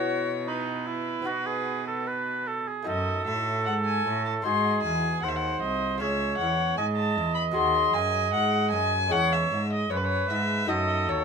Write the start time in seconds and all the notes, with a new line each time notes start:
Already playing: B2 B3 E4 F#4 C#5
0.47 D#4 B4
0.86 E4
1.22 B3 D#4 F#4
1.27 B2
1.46 G#4
1.87 A4
2.07 B4
2.47 A4
2.68 G#4
2.83 A3 D#4 F#4
2.87 F#2 A4 D#5
3.27 A2 E5
3.66 G#2 F#5
3.85 G#5
4.07 A2
4.26 A5
4.42 G#2 G#3 D#4 F#4 G#4 C6
4.46 G#2
4.82 E2 G#5
5.22 D#2 C5 F#5
5.29 E5
5.36 F#5
5.61 C2 D#5
5.98 C#2 G#3 C#4 G#4 C#5 E5
6.38 E2 F#5
6.77 G#2 D#5 G#5
6.96 A5
7.17 E2
7.35 B5
7.51 G#3 F#4 G#4 C6
7.56 D#2
7.93 F#2 G#5
8.33 G#2 F#5
8.71 F#2 G#5
9.08 G#3 C#4 G#4 C#5
9.12 E2 F#5
9.32 E5
9.51 G#2
9.73 D#5
9.90 F#2 B4 C#5
9.97 B4
10.04 C#5
10.30 G#2 E5
10.65 A3 D#4 F#4 A4 D#5
10.69 F#2
11.08 D#2 C#5